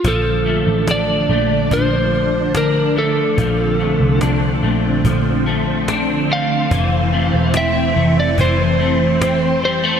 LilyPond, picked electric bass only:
\new Staff \with { instrumentName = "Picked electric bass" } { \clef bass \time 4/4 \key bes \lydian \tempo 4 = 72 bes,,8. a,,8. bes,,8 bes,,2 | bes,,8. c,8. bes,,8 bes,,2 | f,,8. e,,8. f,,8 f,,2 | }